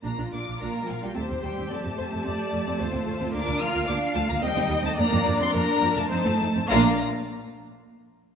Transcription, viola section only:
\new Staff \with { instrumentName = "Viola section" } { \time 3/4 \key bes \major \tempo 4 = 108 << { f'2 g'4~ | g'2 f'4~ | f'2 ees'4 | d'2 ees'8 r8 |
d'8 r2 r8 | } \\ { d'16 d'16 bes16 d'16 d'16 r16 bes16 d'16 c'16 c'16 g16 c'16 | c'16 c'16 a16 c'16 c'16 r16 a16 c'16 c'16 c'16 a16 c'16 | bes16 bes16 f16 bes16 bes16 r16 f16 bes16 c'16 c'16 g16 c'16 | bes16 bes16 f16 bes16 bes16 r16 f16 bes16 c'16 c'16 a16 c'16 |
bes8 r2 r8 | } >> }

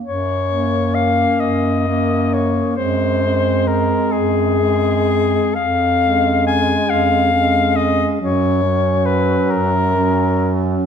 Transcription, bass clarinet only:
\new Staff \with { instrumentName = "Bass clarinet" } { \clef bass \time 6/8 \key fis \major \tempo 4. = 44 fis,4. fis,4. | fis,4. fis,4. | eis,4. eis,4. | fis,4. fis,4. | }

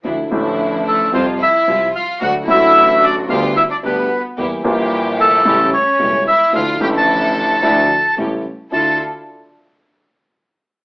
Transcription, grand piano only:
\new Staff \with { instrumentName = "Grand piano" } { \clef bass \time 4/4 \key d \minor \tempo 4 = 111 <d, d f a e'>8 <a,, a, d f a e'>4. <f, c f g f'>8 r8 <c, c f g f'>8 r8 | <d, d fis a fis'>8 <a,, a, d fis a fis'>4. <d, d g b g'>8 r8 <d, d g b g'>8 r8 | <e, e g bes g'>8 <bes,, bes, e g bes g'>4. <a,, a, cis g a e'>8 r8 <e,, e, cis g a e'>8 r8 | <d, d f a e'>8 <a,, a, d f a e'>4. <d, d f a e'>8 r8 <a,, a, cis g a e'>8 r8 |
<d, d' e' f'>8 r2. r8 | }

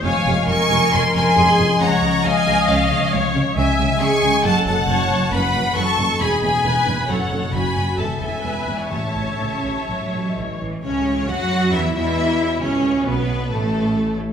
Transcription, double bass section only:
\new Staff \with { instrumentName = "Double bass section" } { \clef bass \time 4/4 \key des \major \tempo 4 = 135 f,,8 f,,8 f,,8 f,,8 f,,8 f,,8 f,,8 f,,8 | des,8 des,8 des,8 des,8 des,8 des,8 des,8 des,8 | \key a \major cis,8 cis,8 cis,8 cis,8 fis,,8 fis,,8 fis,,8 fis,,8 | fis,,8 fis,,8 fis,,8 fis,,8 e,,8 e,,8 e,,8 e,,8 |
fis,,8 fis,,8 fis,,8 fis,,8 e,,8 e,,8 e,,8 e,,8 | a,,8 a,,8 a,,8 a,,8 a,,8 a,,8 a,,8 a,,8 | cis,4 fis,4 e,8 e,4. | cis,4 b,,4 a,,4. r8 | }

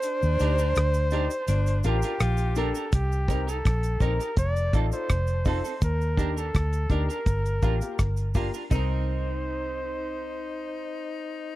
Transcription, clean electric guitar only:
\new Staff \with { instrumentName = "Clean electric guitar" } { \time 4/4 \key c \dorian \tempo 4 = 83 r8 <d' g' bes'>16 <d' g' bes'>16 r8 <d' g' bes'>16 r8. <d' f' bes'>16 <d' f' bes'>16 r8 <d' g' bes'>16 <d' g' bes'>16 | r8 <ees' g' bes'>16 <ees' g' bes'>16 r8 <ees' g' bes'>16 <ees' g' bes'>16 r8 <c' ees' a'>16 r8. <c' ees' a'>16 <c' ees' a'>16 | r8 <d' g' bes'>16 <d' g' bes'>16 r8 <d' g' bes'>16 <d' g' bes'>16 r8 <d' f' bes'>16 r8. <d' f' bes'>16 <d' f' bes'>16 | <c' ees' bes'>1 | }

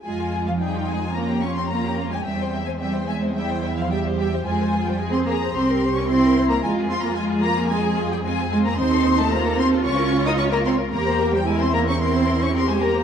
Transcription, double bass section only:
\new Staff \with { instrumentName = "Double bass section" } { \clef bass \time 4/4 \key f \minor \tempo 4 = 110 f,1 | e,1 | f,2 c,2 | f,1 |
ees,2 des,2 | e,1 | }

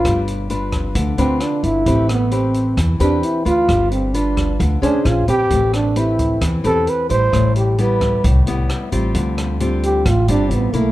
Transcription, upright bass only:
\new Staff \with { instrumentName = "Upright bass" } { \clef bass \time 4/4 \key a \minor \tempo 4 = 132 g,,2 d,8 d,8 r8 g,,8 | a,,2 e,8 e,8 r8 d,8 | g,,2 d,8 d,16 r16 bes,,8 bes,,8 | a,,2 e,8 e,8 r8 a,,8 |
a,,2 c,8 c,8 r8 a,,8 | d,2 a,,8 g,,8 a,,8 b,,8 | }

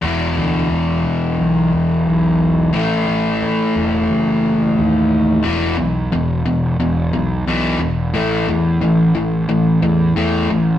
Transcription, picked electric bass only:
\new Staff \with { instrumentName = "Picked electric bass" } { \clef bass \time 4/4 \key a \major \tempo 4 = 89 e,,8 d,8 e,,8 e,,8 b,,8 e,,8 b,,4 | a,,8 a,,8 a,8 e,,8 fis,,4 dis,4 | e,,8 b,,8 e,,8 e,,8 e,,8 b,,8 b,,8 e,,8 | a,,8 e,8 a,,8 a,,8 a,,8 e,8 e,8 a,,8 | }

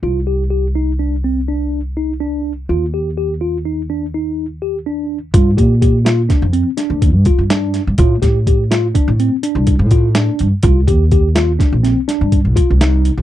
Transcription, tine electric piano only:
\new Staff \with { instrumentName = "Tine electric piano" } { \time 11/8 \key g \minor \tempo 4 = 124 f'8 g'8 g'8 ees'8 d'8 c'8 d'4 ees'8 d'4 | f'8 g'8 g'8 f'8 ees'8 d'8 ees'4 g'8 d'4 | f'8 g'8 g'8 f'8 d'8 c'8 d'4 f'8 d'4 | f'8 g'8 g'8 f'8 d'8 c'8 d'4 f'8 d'4 |
f'8 g'8 g'8 f'8 d'8 c'8 d'4 f'8 ees'4 | }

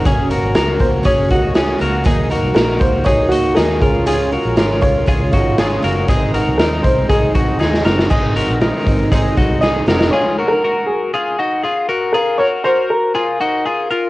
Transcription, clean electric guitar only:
\new Staff \with { instrumentName = "Clean electric guitar" } { \time 4/4 \key ges \lydian \tempo 4 = 119 <des' aes'>8 <ges' bes'>8 <ges' bes'>4 <des' aes'>8 <ees' ges'>8 <des' aes'>8 <ges' bes'>8 | <ees' aes'>8 <ges' bes'>8 <ges' bes'>4 <ees' aes'>8 <ees' ges'>8 <ees' aes'>8 <f' bes'>8 | <f' aes'>8 <ges' bes'>8 <f' bes'>4 <f' aes'>8 <ees' ges'>8 <f' aes'>8 <ges' bes'>8 | <ees' aes'>8 <ges' bes'>8 <ees' bes'>4 <ees' aes'>8 <ees' ges'>8 <ees' aes'>8 <ges' bes'>8 |
<ees' aes'>8 <ges' bes'>8 <ees' bes'>4 <ees' aes'>8 <ees' ges'>8 <ees' aes'>8 <ges' bes'>8 | <f' aes'>8 <ges' bes'>8 <ges' bes'>4 <f' aes'>8 <ees' ges'>8 <f' aes'>8 <ges' bes'>8 | <f' aes'>8 <ges' bes'>8 <ges' bes'>4 <f' aes'>8 <ees' ges'>8 <f' aes'>8 <f' bes'>8 | }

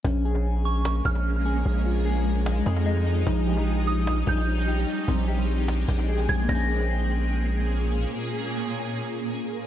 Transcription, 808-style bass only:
\new Staff \with { instrumentName = "808-style bass" } { \clef bass \time 4/4 \key bes \dorian \tempo 4 = 149 bes,,2~ bes,,8 bes,,4. | bes,,2~ bes,,8 f,4. | bes,,2~ bes,,8 bes,,4. | r8 bes,,2 bes,,4 bes,,8 |
bes,,1 | r1 | }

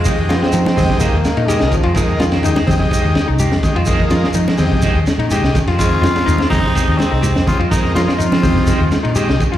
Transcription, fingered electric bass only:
\new Staff \with { instrumentName = "Fingered electric bass" } { \clef bass \time 4/4 \key f \minor \tempo 4 = 125 f,8 f16 r16 f8 f,8. ees,16 r16 bes,8 c,16 r16 f,16~ | f,8 f,8 ees,16 r16 f,8 r16 ees,16 r16 c,8 f,16 r16 f,16~ | f,8 f16 r16 f8 f,8. ees,16 r16 bes,8 c,16 r16 f,16~ | f,8 f,8 ees,16 r16 f,8 r16 ees,16 r16 c,8 f,16 r16 f,16~ |
f,8 f16 r16 f8 f,8. ees,16 r16 bes,8 c,16 r16 f,16 | }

